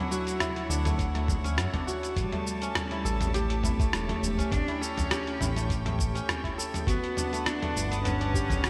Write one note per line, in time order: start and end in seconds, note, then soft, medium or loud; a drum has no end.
0.00 1.54 F#3 loud
0.00 0.85 A3 medium
0.00 0.69 D4 medium
0.00 0.21 E4 loud
0.00 2.13 E4 medium
0.00 6.84 C#5 medium
0.00 2.13 F#5 medium
0.11 1.57 F#4 loud
0.11 cabasa medium
0.27 closed hi-hat soft
0.27 cabasa soft
0.40 1.97 E4 medium
0.40 cross-stick loud
0.40 closed hi-hat medium
0.40 mid tom medium
0.40 cabasa soft
0.56 closed hi-hat soft
0.69 1.59 D2 medium
0.69 1.50 D4 medium
0.69 cabasa medium
0.85 1.14 A3 medium
0.85 closed hi-hat soft
0.85 mid tom medium
0.85 cabasa soft
0.99 kick loud
0.99 closed hi-hat medium
0.99 cabasa soft
1.15 2.32 A3 medium
1.15 cross-stick soft
1.15 closed hi-hat soft
1.28 kick loud
1.28 mid tom medium
1.28 cabasa medium
1.44 1.80 C#4 medium
1.44 closed hi-hat soft
1.44 cabasa soft
1.57 1.68 F#2 medium
1.57 cross-stick loud
1.57 closed hi-hat medium
1.57 cabasa soft
1.73 2.68 D4 medium
1.73 kick medium
1.73 closed hi-hat soft
1.73 mid tom medium
1.87 3.33 F#4 medium
1.87 cabasa medium
2.03 closed hi-hat soft
2.03 cabasa soft
2.16 2.26 A1 medium
2.16 2.71 G3 medium
2.16 6.83 G4 medium
2.16 4.50 A5 medium
2.16 kick loud
2.16 closed hi-hat medium
2.16 cabasa soft
2.32 3.79 A3 medium
2.32 closed hi-hat soft
2.32 mid tom medium
2.47 cabasa medium
2.62 4.36 C#4 medium
2.62 closed hi-hat soft
2.62 cabasa soft
2.75 3.35 G3 medium
2.75 cross-stick loud
2.75 closed hi-hat medium
2.75 mid tom medium
2.75 cabasa soft
2.91 3.63 E4 medium
2.91 closed hi-hat soft
3.05 3.85 A1 medium
3.05 4.36 A4 loud
3.05 cabasa medium
3.21 closed hi-hat soft
3.21 mid tom medium
3.21 cabasa soft
3.34 3.92 A3 loud
3.34 4.75 G4 loud
3.34 closed hi-hat medium
3.34 cabasa soft
3.50 closed hi-hat soft
3.63 4.67 E4 medium
3.63 kick loud
3.63 mid tom medium
3.63 cabasa medium
3.79 4.08 A3 medium
3.79 kick loud
3.79 closed hi-hat soft
3.79 udu medium
3.79 cabasa soft
3.93 4.12 E1 medium
3.93 4.54 A3 loud
3.93 cross-stick loud
3.93 closed hi-hat medium
3.93 cabasa soft
4.09 5.56 A3 medium
4.09 closed hi-hat soft
4.09 mid tom medium
4.22 4.42 E1 loud
4.22 cabasa medium
4.38 6.12 C#4 medium
4.38 closed hi-hat soft
4.38 udu medium
4.38 cabasa soft
4.52 4.62 A1 loud
4.52 4.83 D4 loud
4.52 6.85 G5 medium
4.52 kick loud
4.52 closed hi-hat medium
4.52 mid tom medium
4.52 cabasa soft
4.68 5.40 E4 medium
4.68 closed hi-hat soft
4.81 5.70 C#4 loud
4.81 6.13 A4 loud
4.81 cabasa medium
4.97 closed hi-hat soft
4.97 mid tom medium
4.97 udu medium
4.97 cabasa soft
5.11 6.52 G4 loud
5.11 cross-stick loud
5.11 closed hi-hat medium
5.11 cabasa soft
5.27 closed hi-hat soft
5.40 6.20 A1 medium
5.40 6.44 E4 medium
5.40 mid tom medium
5.40 cabasa medium
5.56 5.85 A3 medium
5.56 closed hi-hat soft
5.56 cabasa soft
5.69 kick loud
5.69 closed hi-hat medium
5.69 cabasa soft
5.85 7.32 A3 medium
5.85 closed hi-hat soft
5.85 mid tom medium
5.99 kick loud
5.99 udu loud
5.99 cabasa medium
6.15 7.23 C#4 medium
6.15 closed hi-hat soft
6.15 cabasa soft
6.29 cross-stick loud
6.29 closed hi-hat medium
6.29 mid tom medium
6.29 cabasa soft
6.44 8.01 E4 medium
6.44 kick medium
6.44 closed hi-hat soft
6.58 7.90 A4 loud
6.58 cabasa medium
6.74 closed hi-hat soft
6.74 mid tom medium
6.74 cabasa soft
6.87 6.97 G1 loud
6.87 7.47 B3 loud
6.87 8.33 F#4 loud
6.87 8.70 B4 medium
6.87 8.70 F#5 medium
6.87 8.70 A5 medium
6.87 kick loud
6.87 closed hi-hat medium
6.87 cabasa soft
7.04 closed hi-hat soft
7.17 8.20 D4 medium
7.17 mid tom medium
7.17 cabasa medium
7.32 7.62 A3 medium
7.32 closed hi-hat soft
7.32 cabasa soft
7.46 8.04 D4 loud
7.46 cross-stick loud
7.46 closed hi-hat medium
7.46 cabasa soft
7.62 8.70 A3 medium
7.62 closed hi-hat soft
7.62 mid tom medium
7.76 8.56 G1 medium
7.76 cabasa medium
7.92 8.70 B3 medium
7.92 closed hi-hat soft
7.92 cabasa soft
8.04 8.70 C#4 loud
8.04 closed hi-hat medium
8.04 mid tom medium
8.04 cabasa soft
8.21 8.70 D4 medium
8.21 closed hi-hat soft
8.34 8.70 G4 loud
8.34 kick loud
8.34 cabasa medium
8.50 kick loud
8.50 closed hi-hat soft
8.50 mid tom medium
8.50 udu loud
8.50 cabasa soft
8.64 8.70 D1 medium
8.64 8.70 F#4 loud
8.64 cross-stick loud
8.64 closed hi-hat medium
8.64 cabasa soft